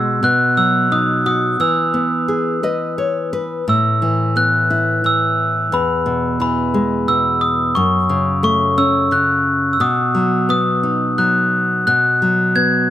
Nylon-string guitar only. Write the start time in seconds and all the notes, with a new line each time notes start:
Already playing: B2 G#3
0.23 B2
0.57 F#3
0.92 D#4
1.26 F#4
1.60 E3
1.94 B3
2.28 G#4
2.63 B4 D#5
2.98 C#5
3.33 B4
3.68 A2
4.02 E3
4.36 B3
4.70 E4
5.04 E3
5.72 E2
6.06 B2
6.40 E3
6.74 G#3
7.08 B2
7.76 F#2
8.09 C#3
8.43 A3
8.78 C#4
9.11 C#3
9.80 B2
10.15 F#3
10.49 B3
10.83 D#4
11.18 F#3
11.87 B2
12.22 F#3
12.55 B3